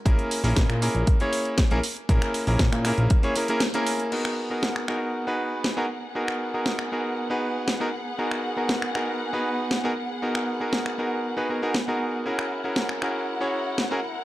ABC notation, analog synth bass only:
X:1
M:4/4
L:1/16
Q:1/4=118
K:G#m
V:1 name="Analog synth bass" clef=bass
A,,, z2 A,,, A,,, A,,2 A,,, z4 z A,,, z2 | A,,, z2 A,,, A,,, A,,2 A,,, z8 | z16 | z16 |
z16 | z16 | z16 |]